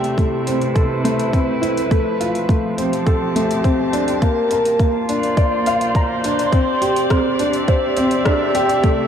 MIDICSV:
0, 0, Header, 1, 4, 480
1, 0, Start_track
1, 0, Key_signature, 0, "major"
1, 0, Tempo, 576923
1, 1592, Time_signature, 4, 2, 24, 8
1, 7549, End_track
2, 0, Start_track
2, 0, Title_t, "String quartet"
2, 0, Program_c, 0, 48
2, 0, Note_on_c, 0, 48, 72
2, 0, Note_on_c, 0, 57, 55
2, 0, Note_on_c, 0, 60, 63
2, 0, Note_on_c, 0, 67, 77
2, 0, Note_on_c, 0, 74, 67
2, 0, Note_on_c, 0, 76, 61
2, 34, Note_on_c, 0, 64, 58
2, 436, Note_off_c, 0, 74, 0
2, 438, Note_off_c, 0, 67, 0
2, 439, Note_off_c, 0, 60, 0
2, 442, Note_off_c, 0, 76, 0
2, 540, Note_on_c, 0, 71, 72
2, 541, Note_on_c, 0, 72, 57
2, 1585, Note_off_c, 0, 57, 0
2, 1587, Note_off_c, 0, 48, 0
2, 1592, Note_on_c, 0, 53, 67
2, 1718, Note_on_c, 0, 60, 60
2, 2205, Note_off_c, 0, 72, 0
2, 2233, Note_off_c, 0, 64, 0
2, 2346, Note_on_c, 0, 67, 67
2, 2362, Note_off_c, 0, 71, 0
2, 2459, Note_on_c, 0, 81, 64
2, 3512, Note_off_c, 0, 53, 0
2, 3512, Note_on_c, 0, 58, 63
2, 4063, Note_on_c, 0, 65, 70
2, 4111, Note_off_c, 0, 67, 0
2, 4282, Note_off_c, 0, 81, 0
2, 4284, Note_off_c, 0, 60, 0
2, 4305, Note_on_c, 0, 74, 64
2, 4357, Note_on_c, 0, 72, 76
2, 5432, Note_off_c, 0, 58, 0
2, 5433, Note_on_c, 0, 60, 61
2, 5440, Note_off_c, 0, 65, 0
2, 5539, Note_on_c, 0, 67, 58
2, 6203, Note_off_c, 0, 72, 0
2, 6289, Note_on_c, 0, 76, 61
2, 7362, Note_on_c, 0, 48, 80
2, 7514, Note_on_c, 0, 57, 69
2, 7549, Note_off_c, 0, 48, 0
2, 7549, Note_off_c, 0, 57, 0
2, 7549, Note_off_c, 0, 60, 0
2, 7549, Note_off_c, 0, 67, 0
2, 7549, Note_off_c, 0, 74, 0
2, 7549, Note_off_c, 0, 76, 0
2, 7549, End_track
3, 0, Start_track
3, 0, Title_t, "Grand piano"
3, 0, Program_c, 1, 0
3, 0, Control_c, 1, 64, 127
3, 0, Note_on_c, 1, 57, 83
3, 0, Note_on_c, 1, 67, 65
3, 139, Note_off_c, 1, 67, 0
3, 155, Note_off_c, 1, 57, 0
3, 155, Note_on_c, 1, 57, 66
3, 382, Note_off_c, 1, 57, 0
3, 393, Note_on_c, 1, 60, 67
3, 621, Note_off_c, 1, 60, 0
3, 626, Note_on_c, 1, 69, 74
3, 857, Note_off_c, 1, 69, 0
3, 868, Note_on_c, 1, 57, 87
3, 1098, Note_off_c, 1, 57, 0
3, 1111, Note_on_c, 1, 60, 84
3, 1340, Note_off_c, 1, 60, 0
3, 1344, Note_on_c, 1, 64, 74
3, 1576, Note_off_c, 1, 64, 0
3, 1587, Note_on_c, 1, 57, 84
3, 1603, Control_c, 1, 64, 0
3, 1770, Control_c, 1, 64, 127
3, 1818, Note_off_c, 1, 57, 0
3, 1831, Note_on_c, 1, 65, 67
3, 2060, Note_off_c, 1, 65, 0
3, 2068, Note_on_c, 1, 57, 69
3, 2298, Note_off_c, 1, 57, 0
3, 2313, Note_on_c, 1, 60, 66
3, 2541, Note_off_c, 1, 60, 0
3, 2550, Note_on_c, 1, 69, 79
3, 2780, Note_off_c, 1, 69, 0
3, 2792, Note_on_c, 1, 57, 82
3, 3020, Note_off_c, 1, 57, 0
3, 3030, Note_on_c, 1, 60, 88
3, 3259, Note_off_c, 1, 60, 0
3, 3270, Note_on_c, 1, 62, 70
3, 3499, Note_off_c, 1, 62, 0
3, 3512, Note_on_c, 1, 58, 90
3, 3524, Control_c, 1, 64, 0
3, 3687, Control_c, 1, 64, 127
3, 3740, Note_off_c, 1, 58, 0
3, 3755, Note_on_c, 1, 70, 74
3, 3982, Note_off_c, 1, 70, 0
3, 3995, Note_on_c, 1, 58, 74
3, 4222, Note_off_c, 1, 58, 0
3, 4233, Note_on_c, 1, 62, 62
3, 4461, Note_off_c, 1, 62, 0
3, 4473, Note_on_c, 1, 74, 77
3, 4701, Note_off_c, 1, 74, 0
3, 4717, Note_on_c, 1, 77, 88
3, 4943, Note_off_c, 1, 77, 0
3, 4958, Note_on_c, 1, 82, 67
3, 5184, Note_off_c, 1, 82, 0
3, 5196, Note_on_c, 1, 62, 70
3, 5331, Note_off_c, 1, 62, 0
3, 5433, Note_on_c, 1, 60, 87
3, 5443, Control_c, 1, 64, 0
3, 5569, Control_c, 1, 64, 127
3, 5661, Note_off_c, 1, 60, 0
3, 5670, Note_on_c, 1, 67, 71
3, 5899, Note_off_c, 1, 67, 0
3, 5912, Note_on_c, 1, 60, 71
3, 6140, Note_off_c, 1, 60, 0
3, 6152, Note_on_c, 1, 62, 67
3, 6380, Note_off_c, 1, 62, 0
3, 6392, Note_on_c, 1, 72, 75
3, 6620, Note_off_c, 1, 72, 0
3, 6633, Note_on_c, 1, 60, 91
3, 6861, Note_off_c, 1, 60, 0
3, 6868, Note_on_c, 1, 62, 97
3, 7098, Note_off_c, 1, 62, 0
3, 7112, Note_on_c, 1, 67, 99
3, 7340, Note_off_c, 1, 67, 0
3, 7353, Note_on_c, 1, 57, 91
3, 7363, Control_c, 1, 64, 0
3, 7515, Control_c, 1, 64, 127
3, 7549, Note_off_c, 1, 57, 0
3, 7549, End_track
4, 0, Start_track
4, 0, Title_t, "Drums"
4, 33, Note_on_c, 9, 42, 38
4, 116, Note_off_c, 9, 42, 0
4, 148, Note_on_c, 9, 36, 94
4, 156, Note_on_c, 9, 42, 29
4, 231, Note_off_c, 9, 36, 0
4, 239, Note_off_c, 9, 42, 0
4, 392, Note_on_c, 9, 42, 68
4, 475, Note_off_c, 9, 42, 0
4, 512, Note_on_c, 9, 42, 36
4, 595, Note_off_c, 9, 42, 0
4, 629, Note_on_c, 9, 36, 100
4, 633, Note_on_c, 9, 42, 30
4, 712, Note_off_c, 9, 36, 0
4, 716, Note_off_c, 9, 42, 0
4, 874, Note_on_c, 9, 42, 70
4, 957, Note_off_c, 9, 42, 0
4, 994, Note_on_c, 9, 42, 37
4, 1077, Note_off_c, 9, 42, 0
4, 1109, Note_on_c, 9, 36, 92
4, 1114, Note_on_c, 9, 42, 29
4, 1192, Note_off_c, 9, 36, 0
4, 1197, Note_off_c, 9, 42, 0
4, 1355, Note_on_c, 9, 42, 69
4, 1439, Note_off_c, 9, 42, 0
4, 1476, Note_on_c, 9, 42, 39
4, 1559, Note_off_c, 9, 42, 0
4, 1590, Note_on_c, 9, 36, 98
4, 1597, Note_on_c, 9, 42, 31
4, 1673, Note_off_c, 9, 36, 0
4, 1681, Note_off_c, 9, 42, 0
4, 1837, Note_on_c, 9, 42, 71
4, 1920, Note_off_c, 9, 42, 0
4, 1956, Note_on_c, 9, 42, 39
4, 2039, Note_off_c, 9, 42, 0
4, 2071, Note_on_c, 9, 36, 110
4, 2081, Note_on_c, 9, 42, 30
4, 2154, Note_off_c, 9, 36, 0
4, 2164, Note_off_c, 9, 42, 0
4, 2315, Note_on_c, 9, 42, 70
4, 2398, Note_off_c, 9, 42, 0
4, 2439, Note_on_c, 9, 42, 40
4, 2522, Note_off_c, 9, 42, 0
4, 2551, Note_on_c, 9, 36, 94
4, 2555, Note_on_c, 9, 42, 28
4, 2634, Note_off_c, 9, 36, 0
4, 2639, Note_off_c, 9, 42, 0
4, 2796, Note_on_c, 9, 42, 74
4, 2879, Note_off_c, 9, 42, 0
4, 2918, Note_on_c, 9, 42, 43
4, 3001, Note_off_c, 9, 42, 0
4, 3031, Note_on_c, 9, 36, 94
4, 3035, Note_on_c, 9, 42, 30
4, 3114, Note_off_c, 9, 36, 0
4, 3118, Note_off_c, 9, 42, 0
4, 3273, Note_on_c, 9, 42, 70
4, 3356, Note_off_c, 9, 42, 0
4, 3394, Note_on_c, 9, 42, 40
4, 3477, Note_off_c, 9, 42, 0
4, 3510, Note_on_c, 9, 36, 89
4, 3512, Note_on_c, 9, 42, 30
4, 3593, Note_off_c, 9, 36, 0
4, 3595, Note_off_c, 9, 42, 0
4, 3750, Note_on_c, 9, 42, 72
4, 3833, Note_off_c, 9, 42, 0
4, 3873, Note_on_c, 9, 42, 41
4, 3956, Note_off_c, 9, 42, 0
4, 3989, Note_on_c, 9, 36, 102
4, 3995, Note_on_c, 9, 42, 29
4, 4072, Note_off_c, 9, 36, 0
4, 4078, Note_off_c, 9, 42, 0
4, 4234, Note_on_c, 9, 42, 69
4, 4317, Note_off_c, 9, 42, 0
4, 4354, Note_on_c, 9, 42, 37
4, 4438, Note_off_c, 9, 42, 0
4, 4469, Note_on_c, 9, 36, 98
4, 4471, Note_on_c, 9, 42, 29
4, 4552, Note_off_c, 9, 36, 0
4, 4554, Note_off_c, 9, 42, 0
4, 4712, Note_on_c, 9, 42, 65
4, 4795, Note_off_c, 9, 42, 0
4, 4835, Note_on_c, 9, 42, 41
4, 4918, Note_off_c, 9, 42, 0
4, 4949, Note_on_c, 9, 36, 94
4, 4953, Note_on_c, 9, 42, 30
4, 5033, Note_off_c, 9, 36, 0
4, 5036, Note_off_c, 9, 42, 0
4, 5193, Note_on_c, 9, 42, 75
4, 5276, Note_off_c, 9, 42, 0
4, 5317, Note_on_c, 9, 42, 40
4, 5401, Note_off_c, 9, 42, 0
4, 5429, Note_on_c, 9, 36, 95
4, 5432, Note_on_c, 9, 42, 29
4, 5512, Note_off_c, 9, 36, 0
4, 5515, Note_off_c, 9, 42, 0
4, 5673, Note_on_c, 9, 42, 68
4, 5756, Note_off_c, 9, 42, 0
4, 5794, Note_on_c, 9, 42, 42
4, 5877, Note_off_c, 9, 42, 0
4, 5910, Note_on_c, 9, 36, 105
4, 5914, Note_on_c, 9, 37, 83
4, 5914, Note_on_c, 9, 42, 28
4, 5993, Note_off_c, 9, 36, 0
4, 5997, Note_off_c, 9, 37, 0
4, 5997, Note_off_c, 9, 42, 0
4, 6151, Note_on_c, 9, 42, 65
4, 6234, Note_off_c, 9, 42, 0
4, 6269, Note_on_c, 9, 42, 37
4, 6352, Note_off_c, 9, 42, 0
4, 6390, Note_on_c, 9, 42, 30
4, 6391, Note_on_c, 9, 36, 96
4, 6473, Note_off_c, 9, 42, 0
4, 6474, Note_off_c, 9, 36, 0
4, 6628, Note_on_c, 9, 42, 68
4, 6711, Note_off_c, 9, 42, 0
4, 6748, Note_on_c, 9, 42, 41
4, 6831, Note_off_c, 9, 42, 0
4, 6868, Note_on_c, 9, 37, 87
4, 6868, Note_on_c, 9, 42, 30
4, 6871, Note_on_c, 9, 36, 89
4, 6951, Note_off_c, 9, 37, 0
4, 6951, Note_off_c, 9, 42, 0
4, 6954, Note_off_c, 9, 36, 0
4, 7112, Note_on_c, 9, 42, 71
4, 7195, Note_off_c, 9, 42, 0
4, 7234, Note_on_c, 9, 42, 37
4, 7317, Note_off_c, 9, 42, 0
4, 7351, Note_on_c, 9, 36, 92
4, 7351, Note_on_c, 9, 42, 29
4, 7434, Note_off_c, 9, 36, 0
4, 7434, Note_off_c, 9, 42, 0
4, 7549, End_track
0, 0, End_of_file